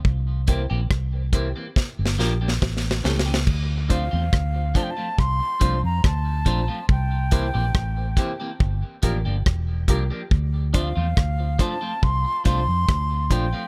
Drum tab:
CC |------------------------|x-----------------------|------------------------|------------------------|
HH |---x-----x--------------|---x-----x-----x-----x--|---x-----x-----x-----x--|---x-----x-----x-----x--|
SD |------r-----o-oo-ooooooo|------r-----r-----r-----|------r-----------r-----|------r-----------r-----|
BD |o--o--o--o--o-----o-----|o--o--o--o--o--o--o--o--|o--o--o--o--o--o--o--o--|o--o--o--o--o--o--o--o--|